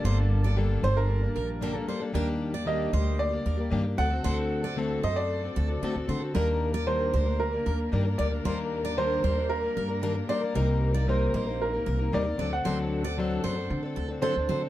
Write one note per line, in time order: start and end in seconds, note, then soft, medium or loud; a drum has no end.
0.00 2.11 G3 medium
0.00 2.11 A#3 medium
0.00 2.11 D4 medium
0.00 0.53 D5 loud
0.00 2.10 A5 medium
0.04 0.79 G1 loud
0.04 0.44 G2 medium
0.04 0.44 D3 medium
0.04 0.44 G3 medium
0.04 0.44 A#3 medium
0.04 0.43 D4 medium
0.04 0.42 A4 medium
0.04 0.17 C5 medium
0.43 0.56 G3 soft
0.43 0.56 A#3 soft
0.43 0.57 D4 medium
0.43 0.57 A4 medium
0.43 0.57 D5 medium
0.56 0.83 G2 medium
0.56 0.83 D3 medium
0.56 0.81 G3 loud
0.56 0.82 A#3 medium
0.56 0.83 D4 medium
0.56 0.84 A4 loud
0.82 1.26 G1 loud
0.82 1.22 G3 medium
0.82 1.23 A#3 medium
0.82 1.22 D4 medium
0.82 1.24 A4 medium
0.82 0.97 C5 loud
0.82 1.21 C5 medium
0.97 1.85 A#4 loud
1.23 1.61 G3 soft
1.23 1.61 A#3 medium
1.23 1.62 D4 soft
1.36 1.79 A#1 loud
1.36 1.48 A#4 medium
1.61 1.75 G2 loud
1.61 1.75 D3 loud
1.61 1.75 G3 medium
1.61 1.75 A#3 loud
1.61 1.74 D4 loud
1.61 1.73 A4 loud
1.61 1.75 A#4 medium
1.74 1.86 G3 medium
1.74 1.87 A#3 medium
1.74 1.88 D4 medium
1.74 1.88 A4 medium
1.87 2.01 G3 medium
1.87 2.01 A#3 medium
1.87 2.00 D4 medium
1.87 1.99 A4 medium
1.87 2.01 C5 medium
2.00 2.12 G3 medium
2.00 2.13 A#3 medium
2.00 2.14 D4 medium
2.00 2.14 A4 medium
2.13 2.89 D#2 loud
2.13 2.53 D#3 medium
2.13 2.54 G3 loud
2.13 3.96 G3 medium
2.13 3.96 A#3 medium
2.13 2.54 A#3 loud
2.13 2.53 D4 loud
2.13 3.96 G4 medium
2.13 2.51 G4 loud
2.13 2.27 A#4 loud
2.52 2.66 A#3 soft
2.52 2.66 D4 soft
2.52 2.66 G4 soft
2.52 2.66 D5 medium
2.65 2.93 D#3 medium
2.65 2.90 G3 medium
2.65 2.92 A#3 medium
2.65 2.93 D4 medium
2.65 2.94 G4 medium
2.65 3.21 D#5 loud
2.92 3.36 D2 loud
2.92 3.32 G3 medium
2.92 3.33 A#3 medium
2.92 3.32 D4 medium
2.92 3.30 G4 medium
2.92 3.30 C5 medium
3.19 3.68 D5 loud
3.31 3.59 A#3 soft
3.31 3.58 D4 medium
3.31 3.56 G4 medium
3.46 3.67 D#2 medium
3.46 3.58 A#4 medium
3.57 3.70 A#3 soft
3.57 3.71 D4 medium
3.57 3.71 G4 soft
3.70 3.93 G2 loud
3.70 3.84 D#3 medium
3.70 3.85 G3 loud
3.70 3.85 A#3 loud
3.70 3.84 D4 loud
3.70 3.83 G4 loud
3.84 3.98 A#3 soft
3.84 3.99 D4 soft
3.84 3.98 G4 medium
3.97 4.20 D2 medium
3.97 6.32 D3 medium
3.97 4.11 A3 medium
3.97 6.32 A3 medium
3.97 6.32 C4 medium
3.97 4.11 C4 medium
3.97 6.32 F#4 medium
3.97 4.11 F#4 medium
3.97 6.32 A4 medium
3.97 4.09 A4 medium
3.97 4.11 D5 medium
3.97 4.73 F#5 loud
4.10 4.24 C4 soft
4.10 4.24 F#4 medium
4.10 4.24 A4 medium
4.24 5.00 D2 medium
4.24 4.64 D3 medium
4.24 4.64 A3 medium
4.24 4.64 C4 medium
4.24 4.63 F#4 loud
4.24 4.62 A4 loud
4.24 4.37 C5 loud
4.63 4.76 C4 soft
4.63 4.77 F#4 medium
4.63 4.77 A4 medium
4.63 4.76 D5 medium
4.76 5.03 D3 medium
4.76 5.01 A3 loud
4.76 5.03 C4 medium
4.76 5.04 F#4 loud
4.76 5.04 A4 loud
5.03 5.47 F#2 medium
5.03 5.42 A3 medium
5.03 5.43 C4 medium
5.03 5.42 F#4 medium
5.03 5.41 A4 medium
5.03 5.41 C5 medium
5.03 5.16 D#5 loud
5.16 6.04 D5 loud
5.42 5.70 C4 soft
5.42 5.69 F#4 medium
5.42 5.67 A4 medium
5.56 5.78 D2 loud
5.56 5.69 A4 medium
5.68 5.82 C4 soft
5.68 5.83 F#4 soft
5.68 5.82 A4 medium
5.82 5.95 D3 medium
5.82 5.96 A3 loud
5.82 5.96 C4 medium
5.82 5.95 F#4 loud
5.82 5.95 A4 medium
5.82 5.93 A4 loud
5.82 muted upright bass stroke medium
5.95 6.06 D2 medium
5.95 6.08 C4 soft
5.95 6.09 F#4 medium
5.95 6.08 A4 medium
6.08 6.30 D3 loud
6.08 6.21 A3 medium
6.08 6.22 C4 medium
6.08 6.21 F#4 medium
6.08 6.19 A4 medium
6.08 6.21 C5 medium
6.21 6.35 C4 medium
6.21 6.35 F#4 medium
6.21 6.34 A4 medium
6.34 7.10 D#2 medium
6.34 6.74 D#3 medium
6.34 6.74 G3 medium
6.34 12.35 G3 medium
6.34 10.51 A#3 medium
6.34 6.74 A#3 loud
6.34 10.51 D4 medium
6.34 6.73 D4 loud
6.34 12.35 G4 medium
6.34 6.47 A#4 medium
6.34 12.35 A#4 loud
6.34 6.72 A#4 loud
6.73 6.86 A#3 soft
6.73 6.87 D4 soft
6.73 6.87 A#4 medium
6.73 6.87 D5 medium
6.86 7.13 D#3 medium
6.86 7.12 G3 medium
6.86 7.13 A#3 medium
6.86 7.14 D4 medium
6.86 7.14 A#4 medium
6.86 7.41 C5 loud
7.13 7.57 D2 medium
7.13 7.26 G3 medium
7.13 7.27 A#3 medium
7.13 7.26 D4 medium
7.13 7.25 A#4 medium
7.13 7.51 C5 medium
7.26 7.54 A#3 soft
7.26 7.53 D4 medium
7.26 7.51 A#4 medium
7.40 7.89 A#4 loud
7.52 7.92 A#3 medium
7.52 7.92 D4 soft
7.52 7.92 A#4 medium
7.66 7.88 D#2 medium
7.66 7.79 A#4 medium
7.92 8.14 G2 loud
7.92 8.05 D#3 medium
7.92 8.05 G3 medium
7.92 8.06 A#3 medium
7.92 8.06 D4 loud
7.92 8.04 A#4 medium
8.05 8.18 A#3 soft
8.05 8.19 D4 soft
8.05 8.18 A#4 medium
8.17 8.40 D2 medium
8.17 8.31 G3 medium
8.17 8.32 A#3 medium
8.17 8.31 D4 medium
8.17 8.29 A#4 medium
8.17 8.24 D5 loud
8.17 8.31 D5 medium
8.30 8.44 A#3 soft
8.30 8.45 D4 soft
8.30 8.44 A#4 medium
8.44 9.20 D#2 medium
8.44 8.84 D#3 medium
8.44 8.84 G3 medium
8.44 8.85 A#3 medium
8.44 8.84 D4 medium
8.44 8.82 A#4 medium
8.44 8.57 C5 loud
8.83 8.97 A#3 soft
8.83 8.97 D4 medium
8.83 8.97 A#4 medium
8.83 8.97 D5 medium
8.97 9.23 D#3 medium
8.97 9.21 G3 medium
8.97 9.23 A#3 medium
8.97 9.23 D4 medium
8.97 9.24 A#4 medium
8.97 9.46 C5 loud
9.22 9.67 D#2 medium
9.22 9.36 G3 medium
9.22 9.37 A#3 medium
9.22 9.36 D4 medium
9.22 9.34 A#4 medium
9.22 9.61 C5 medium
9.35 9.64 A#3 soft
9.35 9.63 D4 soft
9.35 9.61 A#4 medium
9.50 9.98 A#4 loud
9.62 9.90 A#3 soft
9.62 9.89 D4 soft
9.62 9.87 A#4 medium
9.77 10.19 G2 medium
9.77 9.89 A#4 medium
9.89 10.02 A#3 soft
9.89 10.02 D4 soft
9.89 10.02 A#4 medium
10.01 10.15 D#3 medium
10.01 10.15 G3 medium
10.01 10.16 A#3 medium
10.01 10.16 D4 loud
10.01 10.15 A#4 medium
10.01 10.14 A#4 medium
10.15 10.28 A#3 soft
10.15 10.29 D4 soft
10.15 10.28 A#4 medium
10.28 10.41 G3 medium
10.28 10.42 A#3 medium
10.28 10.42 D4 medium
10.28 10.40 A#4 medium
10.28 10.41 C5 medium
10.28 10.53 D5 loud
10.41 10.54 A#3 medium
10.41 10.55 D4 soft
10.41 10.54 A#4 medium
10.54 11.30 C2 loud
10.54 10.94 C3 medium
10.54 10.94 G3 medium
10.54 12.37 A#3 medium
10.54 10.95 A#3 medium
10.54 14.69 C4 medium
10.54 10.94 D#4 medium
10.54 10.68 A#4 medium
10.54 10.92 A#4 medium
10.93 11.07 A#3 medium
10.93 11.07 D#4 medium
10.93 11.07 A#4 soft
10.93 11.07 D5 medium
11.07 11.33 C3 medium
11.07 11.32 G3 medium
11.07 11.33 A#3 medium
11.07 11.34 D#4 medium
11.07 11.34 A#4 medium
11.07 11.62 C5 medium
11.33 11.77 A#1 loud
11.33 11.46 G3 medium
11.33 11.47 A#3 medium
11.33 11.48 D#4 medium
11.33 11.45 A#4 medium
11.33 11.71 C5 medium
11.46 11.75 A#3 soft
11.46 11.74 D#4 soft
11.46 11.72 A#4 medium
11.62 12.15 A#4 medium
11.73 12.01 A#3 soft
11.73 12.00 D#4 soft
11.73 11.98 A#4 medium
11.86 12.08 C2 medium
11.86 11.99 A#4 medium
11.99 12.12 A#3 soft
11.99 12.13 D#4 soft
11.99 12.12 A#4 medium
12.12 12.34 D#2 loud
12.12 12.25 C3 medium
12.12 12.26 G3 loud
12.12 12.26 A#3 medium
12.12 12.25 D#4 loud
12.12 12.24 A#4 loud
12.12 12.54 D5 loud
12.25 12.39 A#3 soft
12.25 12.39 D#4 soft
12.25 12.38 A#4 medium
12.38 12.60 D2 medium
12.38 14.69 D3 medium
12.38 12.51 F#3 medium
12.38 14.69 A3 medium
12.38 12.52 C4 medium
12.38 12.51 D4 medium
12.38 14.69 F#4 medium
12.38 14.69 A4 medium
12.38 12.50 A4 medium
12.38 12.51 D5 medium
12.51 12.64 C4 soft
12.51 12.65 D4 medium
12.51 12.64 A4 medium
12.51 14.19 F#5 medium
12.64 13.40 D2 medium
12.64 13.04 D3 medium
12.64 13.04 F#3 medium
12.64 13.04 C4 medium
12.64 13.04 D4 medium
12.64 13.03 A4 medium
12.64 12.77 C5 loud
13.04 13.18 C4 soft
13.04 13.18 D4 soft
13.04 13.17 A4 medium
13.04 13.17 D5 loud
13.17 13.44 D3 medium
13.17 13.42 F#3 loud
13.17 13.43 C4 medium
13.17 13.44 D4 loud
13.17 13.45 A4 medium
13.43 13.65 F#2 medium
13.43 13.56 F#3 medium
13.43 13.57 C4 medium
13.43 13.56 D4 medium
13.43 13.55 A4 medium
13.43 13.81 C5 medium
13.56 13.84 C4 soft
13.56 13.83 D4 medium
13.56 13.81 A4 medium
13.70 13.98 D3 loud
13.83 14.11 C4 soft
13.83 14.09 D4 medium
13.83 14.07 A4 medium
13.96 14.18 D2 medium
13.96 14.08 A4 medium
14.08 14.22 C4 soft
14.08 14.22 D4 soft
14.08 14.22 A4 medium
14.21 14.35 D3 loud
14.21 14.35 F#3 medium
14.21 14.36 C4 loud
14.21 14.36 D4 loud
14.21 14.35 A4 medium
14.21 14.34 A4 loud
14.21 14.69 C5 loud
14.21 muted upright bass stroke soft
14.35 14.47 D2 medium
14.35 14.48 C4 soft
14.35 14.48 A4 medium
14.48 14.69 D3 medium
14.48 14.61 F#3 medium
14.48 14.62 C4 medium
14.48 14.61 D4 medium
14.48 14.59 A4 medium
14.48 14.61 C5 medium
14.61 14.69 C4 soft
14.61 14.69 D4 medium
14.61 14.69 A4 medium